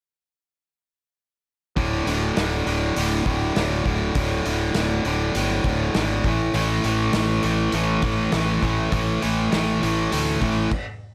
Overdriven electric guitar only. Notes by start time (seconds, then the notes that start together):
1.76 D2 A2 D3
2.07 D2 A2 D3
2.36 D2 A2 D3
2.65 D2 A2 D3
2.96 D2 A2 D3
3.26 D2 A2 D3
3.55 D2 A2 D3
3.85 D2 A2 D3
4.17 D2 A2 D3
4.46 D2 A2 D3
4.76 D2 A2 D3
5.06 D2 A2 D3
5.36 D2 A2 D3
5.66 D2 A2 D3
5.95 D2 A2 D3
6.25 A2 E3 A3
6.54 A2 E3 A3
6.85 A2 E3 A3
7.14 A2 E3 A3
7.45 A2 E3 A3
7.74 A2 E3 A3
8.04 A2 E3 A3
8.33 A2 E3 A3
8.63 A2 E3 A3
8.92 A2 E3 A3
9.21 A2 E3 A3
9.51 A2 E3 A3
9.82 A2 E3 A3
10.12 A2 E3 A3
10.40 A2 E3 A3